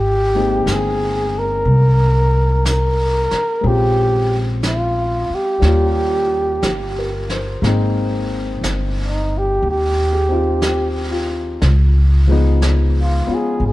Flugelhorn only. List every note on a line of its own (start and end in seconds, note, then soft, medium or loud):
0.00 0.74 G4 medium
0.73 1.40 G#4 medium
1.39 2.67 A#4 medium
2.67 3.68 A#4 medium
3.67 4.47 G4 medium
4.67 5.36 F4 medium
5.35 7.33 G4 medium
9.05 9.39 D#4 medium
9.38 9.67 G4 medium
9.71 11.29 G4 medium
13.01 13.35 F4 medium
13.34 13.63 G#4 medium
13.66 13.73 G#4 medium